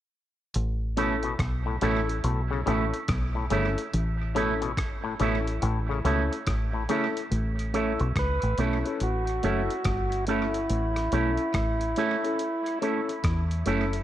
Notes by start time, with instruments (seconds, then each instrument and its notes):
0.54 fingered electric bass A1, closed hi-hat
0.97 clav B2, clean electric guitar A3 C#4 E4, upright piano C#4 E4 A4, closed hi-hat
1.23 clav B2, closed hi-hat
1.39 fingered electric bass B1, kick, cross-stick, closed hi-hat
1.66 clav A2
1.81 fingered electric bass A1, clav B2, clean electric guitar A3 C#4 E4, upright piano C#4 E4 A4, closed hi-hat
2.09 upright piano E4 A4, closed hi-hat
2.24 fingered electric bass B1, clav A2, closed hi-hat
2.51 clav C#3, upright piano E4 A4
2.66 fingered electric bass A1, clav B2, clean electric guitar A3 C#4 E4, upright piano C#4 E4 A4, closed hi-hat
2.93 muted clean electric guitar stroke, closed hi-hat
3.08 fingered electric bass B1, kick, cross-stick, closed hi-hat
3.35 clav A2
3.50 fingered electric bass G1, clav C#3, clean electric guitar A3 C#4 E4, upright piano C#4 E4 A4, closed hi-hat
3.78 closed hi-hat
3.93 fingered electric bass A1, closed hi-hat
4.35 clav B2, clean electric guitar A3 C#4 E4, upright piano C#4 E4 A4, closed hi-hat
4.62 clav B2, closed hi-hat
4.77 fingered electric bass G1, kick, cross-stick, closed hi-hat
5.04 clav A2
5.20 fingered electric bass A1, clav B2, clean electric guitar A3 C#4 E4, upright piano C#4 E4 A4, closed hi-hat
5.47 upright piano E4 A4, closed hi-hat
5.62 fingered electric bass A1, clav A2, closed hi-hat
5.89 clav C#3, upright piano E4 A4
6.05 fingered electric bass C#2, clav B2, clean electric guitar A3 C#4 E4, upright piano C#4 E4 A4, closed hi-hat
6.31 muted clean electric guitar stroke, closed hi-hat
6.47 fingered electric bass A1, kick, cross-stick, closed hi-hat
6.73 clav A2
6.89 clav C#3, clean electric guitar A3 C#4 E4, upright piano C#4 E4 A4, closed hi-hat
7.17 closed hi-hat
7.31 fingered electric bass A1, closed hi-hat
7.59 closed hi-hat
7.74 clean electric guitar A3 C#4 E4, upright piano C#4 E4 A4, closed hi-hat
8.00 fingered electric bass B1, closed hi-hat
8.16 fingered electric bass C#2, tonewheel organ B4, kick, cross-stick, closed hi-hat
8.42 fingered electric bass A1, closed hi-hat
8.58 fingered electric bass B1, clean electric guitar A3 C#4 E4, upright piano C#4 E4 A4, tonewheel organ A4, closed hi-hat
8.85 upright piano C#4 E4 A4, closed hi-hat
9.00 fingered electric bass A1, tonewheel organ F#4, closed hi-hat
9.27 closed hi-hat
9.43 fingered electric bass F#1, clean electric guitar A3 C#4 E4, upright piano C#4 E4 A4, closed hi-hat
9.69 muted clean electric guitar stroke, closed hi-hat
9.85 fingered electric bass G1, kick, cross-stick, closed hi-hat
10.12 closed hi-hat
10.27 clean electric guitar A3 C#4 E4, upright piano C#4 E4 A4, tonewheel organ E4, closed hi-hat
10.54 closed hi-hat
10.70 fingered electric bass A1, closed hi-hat
10.96 cross-stick, closed hi-hat
11.12 fingered electric bass B1, clean electric guitar A3 C#4 E4, upright piano C#4 E4 A4, closed hi-hat
11.37 closed hi-hat
11.54 fingered electric bass A1, kick, cross-stick, closed hi-hat
11.81 closed hi-hat
11.96 clean electric guitar A3 C#4 E4, upright piano C#4 E4 A4, closed hi-hat
12.24 upright piano C#4 E4 A4, closed hi-hat
12.39 closed hi-hat
12.66 closed hi-hat
12.81 clean electric guitar A3 C#4 E4, upright piano C#4 E4 A4, closed hi-hat
13.08 muted clean electric guitar stroke, closed hi-hat
13.24 fingered electric bass E2, kick, cross-stick, closed hi-hat
13.51 closed hi-hat
13.66 fingered electric bass F#1, clean electric guitar A3 C#4 E4, upright piano C#4 E4 A4, closed hi-hat
13.93 closed hi-hat